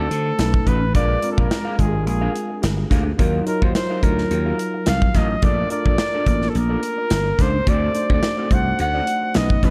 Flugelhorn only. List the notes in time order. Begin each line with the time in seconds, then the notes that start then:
Already playing: A4
0.68 B4
0.96 D5
1.31 A4
1.39 A#4
1.80 G#4
2.08 G#4
3.47 A#4
3.63 C5
3.76 C5
4.04 A#4
4.88 F5
5.17 D#5
5.44 D5
5.72 D5
6.49 A4
6.58 A#4
7.42 C5
7.69 D5
8.13 D5
8.53 F#5
8.81 F#5
9.36 D#5
9.65 B4